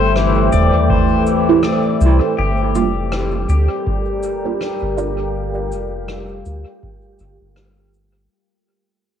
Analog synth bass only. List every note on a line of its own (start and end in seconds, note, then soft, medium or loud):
0.00 0.50 G1 medium
0.52 0.72 E1 loud
2.01 2.20 C2 loud
2.39 2.77 G1 loud
2.75 3.46 F1 medium
3.49 3.68 D2 loud
4.82 5.74 G1 medium
5.72 6.43 F1 medium
6.46 6.65 D2 loud
7.20 7.39 G1 medium
7.41 8.28 G1 medium